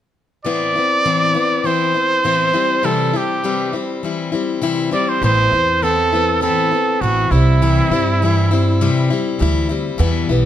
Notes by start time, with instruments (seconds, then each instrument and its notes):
0.45 steel-string acoustic guitar A2 E3 B3 C4 E4, trumpet D5
0.75 steel-string acoustic guitar B3 C4 E4
1.05 steel-string acoustic guitar A2 E3 B3 C4 E4
1.35 steel-string acoustic guitar B3 C4 E4
1.64 steel-string acoustic guitar E3 B3 C4 E4, trumpet C5
1.94 steel-string acoustic guitar B3 C4 E4
2.24 steel-string acoustic guitar A2 E3 B3 C4 E4
2.53 steel-string acoustic guitar G3 C4 E4
2.83 steel-string acoustic guitar C3 E3 G3 C4 E4, trumpet A4
3.13 steel-string acoustic guitar G3 C4 E4, trumpet G4
3.44 steel-string acoustic guitar C3 E3 G3 C4 E4
3.73 steel-string acoustic guitar G3 C4 E4
4.03 steel-string acoustic guitar E3 G3 C4 E4
4.32 steel-string acoustic guitar G3 C4 E4
4.62 steel-string acoustic guitar C3 E3 G3 C4 E4
4.91 steel-string acoustic guitar G3 C4 E4, trumpet D5
5.09 trumpet C5
5.22 upright bass A1, steel-string acoustic guitar A2 E3 B3 C4 E4, trumpet C5
5.52 upright bass E2, steel-string acoustic guitar B3 C4 E4
5.82 steel-string acoustic guitar E3 B3 C4 E4, trumpet A4
6.13 steel-string acoustic guitar B3 C4 E4
6.41 steel-string acoustic guitar A2 E3 B3 C4 E4, trumpet A4
6.71 steel-string acoustic guitar B3 C4 E4
7.01 upright bass A1, steel-string acoustic guitar E3 B3 C4 E4, trumpet F#4
7.31 upright bass C2, steel-string acoustic guitar G3 C4 E4, trumpet E4
7.62 steel-string acoustic guitar C3 E3 G3 C4 E4
7.90 upright bass G2, steel-string acoustic guitar G3 C4 E4
8.22 steel-string acoustic guitar E3 G3 C4 E4
8.51 steel-string acoustic guitar G3 C4 E4
8.81 steel-string acoustic guitar C3 E3 G3 C4 E4
9.10 steel-string acoustic guitar G3 C4 E4
9.39 upright bass D2, steel-string acoustic guitar E3 G3 C4 E4
9.69 steel-string acoustic guitar G3 C4 E4
9.98 steel-string acoustic guitar E2 B2 E3 G3 B3 E4, upright bass E2
10.29 upright bass B1, steel-string acoustic guitar E3 G3 B3 E4